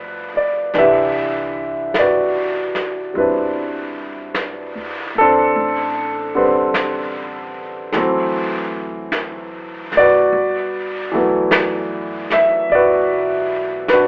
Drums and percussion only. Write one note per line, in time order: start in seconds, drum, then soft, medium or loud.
0.74 brush sweep soft
0.74 snare soft
1.94 brush sweep soft
1.94 snare soft
1.94 hi-hat pedal soft
2.75 snare soft
3.15 brush sweep soft
4.34 brush sweep soft
4.34 snare soft
4.34 hi-hat pedal soft
5.55 brush sweep soft
6.74 brush sweep soft
6.74 snare soft
6.74 hi-hat pedal soft
7.92 brush sweep soft
7.92 snare soft
9.12 brush sweep soft
9.12 snare soft
9.12 hi-hat pedal soft
9.92 snare soft
10.32 brush sweep soft
11.51 brush sweep soft
11.51 snare soft
11.51 hi-hat pedal soft
12.30 snare soft
12.70 brush sweep soft
13.88 brush sweep soft
13.88 snare soft
13.88 hi-hat pedal soft